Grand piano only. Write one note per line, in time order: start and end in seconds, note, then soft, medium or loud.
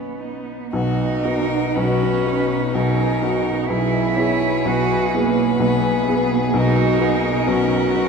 0.00 0.68 B1 soft
0.00 0.68 B3 soft
0.00 0.68 D#4 soft
0.00 0.68 F#4 soft
0.73 1.23 B1 medium
0.73 1.23 B2 medium
1.25 1.71 B3 medium
1.25 1.71 F#4 medium
1.76 2.24 B1 medium
1.76 2.24 B2 medium
2.26 2.70 B3 medium
2.26 2.70 F#4 medium
2.74 3.20 B1 medium
2.74 3.19 B2 medium
3.22 3.65 B3 medium
3.22 3.65 F#4 medium
3.69 4.16 B1 medium
3.69 4.16 B2 medium
4.17 4.61 B3 medium
4.17 4.62 E4 medium
4.17 4.62 G#4 medium
4.65 5.11 B1 medium
4.65 5.12 B2 medium
5.14 5.57 B3 medium
5.14 5.57 E4 medium
5.14 5.58 G#4 medium
5.59 6.06 B1 medium
5.59 6.06 B2 medium
6.08 6.50 B3 medium
6.08 6.50 E4 medium
6.08 6.50 G#4 medium
6.54 6.99 B1 medium
6.54 6.99 B2 medium
6.99 7.42 B3 medium
6.99 7.42 F#4 medium
6.99 7.43 B4 medium
7.47 7.93 B1 medium
7.47 7.93 B2 medium
7.95 8.09 B3 medium
7.95 8.09 F#4 medium
7.95 8.09 B4 medium